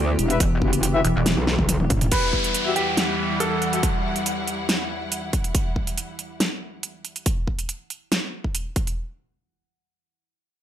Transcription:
Already playing: wobble bass D2, ambient pad E3 B3 G4
0.19 wobble bass E1, closed hi-hat
0.30 brass ensemble E4 B4 E5, closed hi-hat
0.40 wobble bass E1, kick, closed hi-hat
0.62 wobble bass F#1, kick
0.73 closed hi-hat
0.83 closed hi-hat
0.94 brass ensemble E4 B4 E5
1.05 wobble bass E1, closed hi-hat
1.16 wobble bass E1
1.26 snare, closed hi-hat, high tom
1.37 wobble bass B1, high tom
1.47 snare, high tom
1.59 kick, mid tom
1.69 closed hi-hat, mid tom
1.80 wobble bass E1, mid tom
1.90 kick, closed hi-hat, mid tom
2.01 closed hi-hat, mid tom
2.12 ambient pad E2 E3 G3 F#5, string section E4, grand piano B4, kick, closed hi-hat, crash, downlifter
2.23 string section G3
2.33 kick
2.44 closed hi-hat
2.54 closed hi-hat
2.66 brass ensemble F#4 G4 E5
2.76 grand piano G4, closed hi-hat
2.82 string section F#5
2.97 snare, closed hi-hat
3.40 grand piano A4, closed hi-hat
3.62 closed hi-hat
3.73 brass ensemble F#4 G4 E5, closed hi-hat
3.83 kick, closed hi-hat
4.16 closed hi-hat
4.26 closed hi-hat
4.47 closed hi-hat
4.69 snare, closed hi-hat
5.12 closed hi-hat
5.33 kick, closed hi-hat
5.44 closed hi-hat
5.55 kick, closed hi-hat
5.76 kick
5.87 closed hi-hat
5.98 closed hi-hat
6.19 closed hi-hat
6.40 snare, closed hi-hat
6.83 closed hi-hat
7.05 closed hi-hat
7.16 closed hi-hat
7.26 kick, closed hi-hat
7.47 kick
7.59 closed hi-hat
7.69 closed hi-hat
7.90 closed hi-hat
8.12 snare, closed hi-hat
8.44 kick
8.55 closed hi-hat
8.76 kick, closed hi-hat
8.87 closed hi-hat

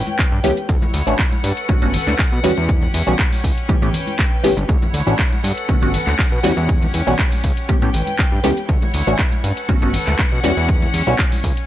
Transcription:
Already playing: string section C#4 B4 G5
0.07 closed hi-hat, high conga, shaker
0.19 kick, clap, closed hi-hat, shaker
0.32 analog synth bass G2
0.44 analog synth bass C#2, analog polysynth E3 A3 B3 C#4 G4, open hi-hat, high conga, shaker
0.57 closed hi-hat, shaker
0.68 analog synth bass D2, string section E4 C#5 F#5, kick, closed hi-hat, shaker
0.82 closed hi-hat, high conga, low conga
0.94 analog synth bass D2, open hi-hat, shaker
1.07 analog synth bass A1, analog polysynth E3 A3 C#4 D4 F#4, closed hi-hat, shaker
1.19 kick, clap, closed hi-hat, shaker
1.32 closed hi-hat, high conga
1.44 analog synth bass G2, string section C#4 A4 B4, open hi-hat, shaker
1.57 closed hi-hat, shaker
1.69 analog synth bass G1, analog polysynth D3 A3 B3 C#4 F#4, kick, closed hi-hat, high conga, shaker
1.82 analog synth bass G1, analog polysynth D3 A3 B3 C#4 F#4, closed hi-hat
1.94 open hi-hat, low conga, shaker
2.07 analog synth bass D2, clap, closed hi-hat, high conga, shaker
2.19 kick, clap, closed hi-hat, shaker
2.32 analog synth bass B2
2.43 analog synth bass E2, analog polysynth E3 G3 B3 C#4 F#4, string section C#4 G4, open hi-hat, high conga, shaker
2.57 analog synth bass E2, closed hi-hat, shaker
2.68 kick, closed hi-hat, shaker
2.82 closed hi-hat, high conga, low conga
2.94 analog synth bass E2, open hi-hat, shaker
3.06 analog synth bass B1, analog polysynth E3 G3 B3 C#4 F#4, closed hi-hat, shaker
3.19 kick, clap, closed hi-hat, shaker
3.32 open hi-hat, high conga
3.44 analog synth bass C#2, kick, open hi-hat, shaker
3.58 closed hi-hat, shaker
3.68 analog polysynth E3 A3 B3 C#4 G4, string section B4 G5, kick, closed hi-hat, high conga, shaker
3.82 analog synth bass A2, analog polysynth E3 A3 B3 C#4 G4, closed hi-hat
3.93 open hi-hat, low conga, shaker
4.07 closed hi-hat, high conga, shaker
4.19 kick, clap, closed hi-hat, shaker
4.43 analog synth bass G1, analog polysynth E3 A3 B3 C#4 G4, open hi-hat, high conga, shaker
4.57 analog synth bass G1, closed hi-hat, shaker
4.69 analog synth bass D2, string section E4 C#5 F#5, kick, closed hi-hat, shaker
4.82 closed hi-hat, high conga, low conga
4.93 analog synth bass D2, open hi-hat, shaker
5.07 analog synth bass A1, analog polysynth E3 A3 C#4 D4 F#4, closed hi-hat, shaker
5.19 kick, clap, closed hi-hat, shaker
5.32 closed hi-hat, high conga
5.43 analog synth bass G2, string section C#4 A4 B4, open hi-hat, shaker
5.57 closed hi-hat, shaker
5.69 analog synth bass G1, analog polysynth D3 A3 B3 C#4 F#4, kick, closed hi-hat, high conga, shaker
5.82 analog synth bass G1, analog polysynth D3 A3 B3 C#4 F#4, closed hi-hat
5.93 open hi-hat, low conga, shaker
6.07 analog synth bass D2, clap, closed hi-hat, high conga, shaker
6.19 kick, clap, closed hi-hat, shaker
6.32 analog synth bass B2
6.43 analog synth bass E2, analog polysynth E3 G3 B3 C#4 F#4, string section G4, open hi-hat, high conga, shaker
6.57 analog synth bass E2, closed hi-hat, shaker
6.69 kick, closed hi-hat, shaker
6.82 closed hi-hat, high conga, low conga
6.94 analog synth bass E2, open hi-hat, shaker
7.07 analog synth bass B1, analog polysynth E3 G3 B3 C#4 F#4, closed hi-hat, shaker
7.19 kick, clap, closed hi-hat, shaker
7.32 open hi-hat, high conga
7.44 analog synth bass C#2, kick, open hi-hat, shaker
7.56 closed hi-hat, shaker
7.69 analog polysynth E3 A3 B3 C#4 G4, string section B4 G5, kick, closed hi-hat, high conga, shaker
7.82 analog synth bass A2, analog polysynth E3 A3 B3 C#4 G4, closed hi-hat
7.94 analog synth bass A1, open hi-hat, low conga, shaker
8.07 closed hi-hat, high conga, shaker
8.19 kick, clap, closed hi-hat, shaker
8.32 analog synth bass G2
8.44 analog synth bass C#2, analog polysynth E3 A3 B3 C#4 G4, open hi-hat, high conga, shaker
8.57 closed hi-hat, shaker
8.69 analog synth bass D2, string section E4 C#5 F#5, kick, closed hi-hat, shaker
8.82 closed hi-hat, high conga, low conga
8.94 analog synth bass D2, open hi-hat, shaker
9.07 analog synth bass A1, analog polysynth E3 A3 C#4 D4 F#4, closed hi-hat, shaker
9.19 kick, clap, closed hi-hat, shaker
9.32 closed hi-hat, high conga
9.43 analog synth bass G2, string section C#4 A4 B4 F#5, open hi-hat, shaker
9.57 closed hi-hat, shaker
9.69 analog synth bass G1, analog polysynth D3 A3 B3 C#4 F#4, kick, closed hi-hat, high conga, shaker
9.82 analog synth bass G1, analog polysynth D3 A3 B3 C#4 F#4, closed hi-hat
9.93 open hi-hat, low conga, shaker
10.07 analog synth bass D2, clap, closed hi-hat, high conga, shaker
10.18 kick, clap, closed hi-hat, shaker
10.32 analog synth bass B2
10.43 analog synth bass E2, analog polysynth E3 G3 B3 C#4 F#4, string section G4, open hi-hat, high conga, shaker
10.57 analog synth bass E2, closed hi-hat, shaker
10.69 kick, closed hi-hat, shaker
10.82 closed hi-hat, high conga, low conga
10.94 analog synth bass E2, open hi-hat, shaker
11.07 analog synth bass B1, analog polysynth E3 G3 B3 C#4 F#4, closed hi-hat, shaker
11.19 kick, clap, closed hi-hat, shaker
11.32 open hi-hat, high conga
11.43 analog synth bass C#2, kick, open hi-hat, shaker
11.57 closed hi-hat, shaker

